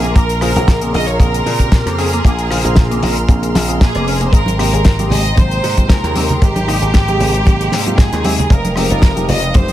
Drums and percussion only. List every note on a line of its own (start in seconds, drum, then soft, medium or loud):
0.04 closed hi-hat medium
0.16 kick loud
0.16 closed hi-hat medium
0.29 closed hi-hat medium
0.41 cross-stick medium
0.41 open hi-hat loud
0.56 closed hi-hat medium
0.68 kick loud
0.68 snare loud
0.68 closed hi-hat medium
0.81 closed hi-hat medium
0.94 open hi-hat loud
1.08 closed hi-hat medium
1.20 kick loud
1.20 closed hi-hat medium
1.34 closed hi-hat medium
1.47 open hi-hat loud
1.59 kick medium
1.59 closed hi-hat medium
1.72 kick loud
1.72 snare loud
1.72 closed hi-hat medium
1.87 cross-stick medium
1.87 closed hi-hat medium
1.99 open hi-hat loud
2.13 closed hi-hat medium
2.25 kick loud
2.25 closed hi-hat medium
2.39 closed hi-hat medium
2.51 cross-stick medium
2.51 open hi-hat loud
2.65 closed hi-hat medium
2.76 kick loud
2.76 snare loud
2.76 closed hi-hat medium
2.91 closed hi-hat medium
3.03 open hi-hat loud
3.17 closed hi-hat medium
3.29 kick loud
3.29 closed hi-hat medium
3.43 closed hi-hat medium
3.55 snare medium
3.55 open hi-hat loud
3.69 closed hi-hat medium
3.81 kick loud
3.81 snare loud
3.81 closed hi-hat medium
3.95 cross-stick medium
3.95 closed hi-hat medium
4.08 open hi-hat loud
4.21 closed hi-hat medium
4.33 kick loud
4.33 closed hi-hat medium
4.46 closed hi-hat medium
4.46 high conga medium
4.59 cross-stick medium
4.59 open hi-hat loud
4.74 closed hi-hat medium
4.85 kick loud
4.85 snare loud
4.85 closed hi-hat medium
4.99 closed hi-hat medium
4.99 high bongo soft
4.99 high conga medium
5.10 open hi-hat loud
5.10 low conga medium
5.26 closed hi-hat medium
5.37 kick loud
5.37 closed hi-hat medium
5.37 high conga medium
5.51 closed hi-hat medium
5.64 open hi-hat loud
5.64 high bongo medium
5.77 kick medium
5.77 closed hi-hat medium
5.77 high conga medium
5.89 kick loud
5.89 snare loud
5.89 closed hi-hat medium
6.04 cross-stick medium
6.04 closed hi-hat medium
6.15 open hi-hat loud
6.15 high conga medium
6.29 closed hi-hat medium
6.29 low conga medium
6.42 kick loud
6.42 closed hi-hat medium
6.56 closed hi-hat medium
6.56 high conga loud
6.68 cross-stick medium
6.68 open hi-hat loud
6.82 closed hi-hat medium
6.94 kick loud
6.94 snare loud
6.94 closed hi-hat medium
7.08 closed hi-hat medium
7.08 high bongo soft
7.08 high conga medium
7.20 open hi-hat loud
7.20 low conga medium
7.34 closed hi-hat medium
7.46 kick loud
7.46 closed hi-hat medium
7.46 high conga medium
7.61 closed hi-hat medium
7.72 snare medium
7.72 open hi-hat loud
7.86 closed hi-hat medium
7.86 high bongo medium
7.86 high conga medium
7.98 kick loud
7.98 snare loud
7.98 closed hi-hat medium
8.13 cross-stick medium
8.13 closed hi-hat medium
8.13 high bongo medium
8.24 open hi-hat loud
8.24 high conga medium
8.39 closed hi-hat medium
8.39 low conga medium
8.50 kick loud
8.50 closed hi-hat medium
8.65 closed hi-hat medium
8.65 high conga medium
8.76 cross-stick medium
8.76 open hi-hat loud
8.90 closed hi-hat medium
9.02 kick loud
9.02 snare loud
9.02 closed hi-hat medium
9.16 closed hi-hat medium
9.16 high bongo soft
9.16 high conga medium
9.29 open hi-hat loud
9.29 low conga medium
9.42 closed hi-hat medium
9.54 kick loud
9.54 closed hi-hat medium
9.54 high conga loud
9.68 closed hi-hat medium